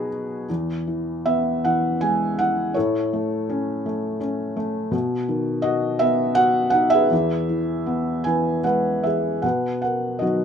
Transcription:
0.00 0.45 B2 medium
0.00 0.51 F#3 soft
0.00 0.45 D#4 medium
0.00 0.45 F#4 medium
0.00 0.47 G#4 medium
0.00 0.51 D#5 medium
0.00 0.51 G#5 medium
0.00 0.51 B5 medium
0.49 2.72 E2 medium
0.87 1.64 E3 soft
1.26 2.72 B3 soft
1.26 1.62 E5 medium
1.64 2.39 E3 soft
1.64 2.03 F#5 medium
2.01 2.74 G#3 soft
2.01 2.40 G#5 medium
2.39 2.75 E3 soft
2.39 2.77 F#5 medium
2.74 4.90 A2 medium
2.74 4.18 E4 soft
2.74 4.18 A4 medium
2.74 4.17 C#5 medium
3.13 3.84 A3 soft
3.50 4.19 C#4 medium
3.86 4.55 A3 soft
4.20 4.91 C#4 soft
4.57 4.92 A3 medium
4.91 7.07 B2 medium
5.28 6.70 D#3 medium
5.62 6.35 F#4 medium
5.62 6.01 D#5 medium
5.99 7.08 B3 medium
5.99 6.38 E5 medium
6.35 7.09 F#4 medium
6.35 6.69 F#5 medium
6.70 7.10 D#4 medium
6.70 6.92 F#5 medium
6.90 8.60 E5 loud
6.94 8.62 G#4 medium
6.94 8.25 B4 medium
7.11 9.39 E2 medium
7.49 8.25 E3 soft
7.86 9.39 B3 medium
8.24 9.02 E3 soft
8.24 8.63 B4 soft
8.24 8.65 G#5 medium
8.63 9.41 G#3 soft
8.63 9.03 B4 medium
8.63 9.05 F#5 medium
9.03 9.42 E3 soft
9.03 9.42 G#4 soft
9.03 9.44 E5 medium
9.42 10.45 B2 soft
9.42 9.81 B4 soft
9.42 9.80 F#5 medium
9.82 10.19 A#4 soft
9.82 10.22 F#5 medium
10.19 10.45 D#3 soft
10.19 10.45 F#3 soft
10.19 10.45 B3 soft
10.19 10.45 F#4 soft
10.19 10.45 D#5 medium

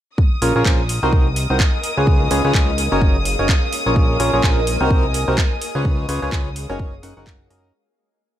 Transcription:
0.18 2.23 A#4 medium
0.18 7.75 D#6 medium
0.18 kick loud
0.32 2.23 D#5 medium
0.42 0.53 A#1 loud
0.42 0.54 C#4 loud
0.42 0.54 F4 medium
0.42 0.54 G#4 medium
0.42 0.54 A#4 medium
0.42 0.54 C#5 loud
0.42 open hi-hat loud
0.56 0.63 A#1 loud
0.56 0.64 C#4 loud
0.56 0.64 F4 medium
0.56 0.64 G#4 medium
0.56 0.64 A#4 medium
0.56 0.64 C#5 loud
0.62 1.00 A#1 medium
0.62 2.23 G#5 medium
0.62 kick loud
0.66 clap loud
0.89 open hi-hat loud
1.03 1.47 C2 loud
1.03 1.28 C4 loud
1.03 1.28 D#4 medium
1.03 1.28 F#4 medium
1.03 1.28 A#4 medium
1.03 1.28 C5 loud
1.13 kick loud
1.36 open hi-hat loud
1.50 1.62 C2 loud
1.50 1.64 C4 medium
1.50 1.64 D#4 medium
1.50 1.64 F#4 medium
1.50 1.64 A#4 medium
1.50 1.64 C5 medium
1.60 kick loud
1.60 clap loud
1.84 3.25 G#4 medium
1.84 open hi-hat loud
1.97 2.29 C#2 loud
1.97 2.28 C#4 medium
1.97 2.29 F4 medium
1.97 2.28 G#4 medium
1.97 2.29 B4 medium
1.97 2.28 C#5 medium
2.07 kick loud
2.31 2.42 C#2 loud
2.31 2.43 C#4 loud
2.31 2.43 F4 medium
2.31 2.43 G#4 medium
2.31 2.43 B4 medium
2.31 2.43 C#5 loud
2.31 open hi-hat loud
2.45 2.52 C#2 loud
2.45 2.53 C#4 loud
2.45 2.53 F4 medium
2.45 2.53 G#4 medium
2.45 2.53 B4 medium
2.45 2.53 C#5 loud
2.54 2.89 C#2 loud
2.54 kick loud
2.54 clap loud
2.78 6.01 A#4 medium
2.78 open hi-hat loud
2.92 3.36 F#1 loud
2.92 3.17 C#4 loud
2.92 3.17 D#4 medium
2.92 3.17 F#4 medium
2.92 3.17 A#4 medium
2.92 3.17 C#5 loud
3.02 kick loud
3.21 6.01 D#5 medium
3.25 open hi-hat loud
3.32 6.01 G#5 medium
3.39 3.51 F#1 medium
3.39 3.53 C#4 medium
3.39 3.53 D#4 medium
3.39 3.53 F#4 medium
3.39 3.53 A#4 medium
3.39 3.53 C#5 medium
3.49 kick loud
3.49 clap loud
3.73 open hi-hat loud
3.86 4.18 A#1 loud
3.86 4.17 C#4 medium
3.86 4.17 F4 medium
3.86 4.17 G#4 medium
3.86 4.17 A#4 medium
3.86 4.17 C#5 medium
3.96 kick loud
4.20 4.31 A#1 loud
4.20 4.31 C#4 loud
4.20 4.31 F4 medium
4.20 4.31 G#4 medium
4.20 4.31 A#4 medium
4.20 4.31 C#5 loud
4.20 open hi-hat loud
4.33 4.41 A#1 loud
4.33 4.42 C#4 loud
4.33 4.42 F4 medium
4.33 4.42 G#4 medium
4.33 4.42 A#4 medium
4.33 4.42 C#5 loud
4.43 4.78 A#1 loud
4.43 kick loud
4.43 clap loud
4.67 open hi-hat loud
4.81 5.25 C2 loud
4.81 5.05 C4 loud
4.81 5.05 D#4 medium
4.81 5.05 F#4 medium
4.81 5.05 A#4 medium
4.81 5.05 C5 loud
4.91 kick loud
5.14 open hi-hat loud
5.28 5.40 C2 loud
5.28 5.42 C4 medium
5.28 5.42 D#4 medium
5.28 5.42 F#4 medium
5.28 5.42 A#4 medium
5.28 5.42 C5 medium
5.38 kick loud
5.38 clap loud
5.61 7.03 G#4 medium
5.61 open hi-hat loud
5.75 6.07 C#2 loud
5.75 6.06 C#4 medium
5.75 6.06 F4 medium
5.75 6.06 G#4 medium
5.75 6.06 B4 medium
5.75 6.06 C#5 medium
5.85 kick loud
6.09 6.20 C#2 loud
6.09 6.20 C#4 loud
6.09 6.20 F4 medium
6.09 6.20 G#4 medium
6.09 6.20 B4 medium
6.09 6.20 C#5 loud
6.09 open hi-hat loud
6.22 6.30 C#2 loud
6.22 6.31 C#4 loud
6.22 6.31 F4 medium
6.22 6.31 G#4 medium
6.22 6.31 B4 medium
6.22 6.31 C#5 loud
6.32 6.67 C#2 medium
6.32 6.49 F4 medium
6.32 kick loud
6.32 clap loud
6.56 open hi-hat loud
6.70 7.01 F#1 loud
6.70 6.94 C#4 loud
6.70 6.94 D#4 medium
6.70 6.94 F#4 medium
6.70 6.94 A#4 medium
6.70 6.94 C#5 loud
6.80 kick loud
7.03 7.14 F#1 loud
7.03 7.13 C#4 medium
7.03 7.14 D#4 medium
7.03 7.14 F#4 medium
7.03 7.14 A#4 medium
7.03 7.14 F#5 medium
7.03 open hi-hat loud
7.17 7.48 F#1 loud
7.17 7.48 C#4 medium
7.17 7.48 D#4 medium
7.17 7.48 F#4 medium
7.17 7.48 A#4 medium
7.17 7.48 F#5 medium
7.27 kick loud
7.27 clap loud
7.50 7.72 F#1 loud
7.50 7.73 C#4 medium
7.50 7.73 D#4 medium
7.50 7.73 F#4 medium
7.50 7.73 A#4 medium
7.50 7.73 D#5 medium
7.50 open hi-hat loud

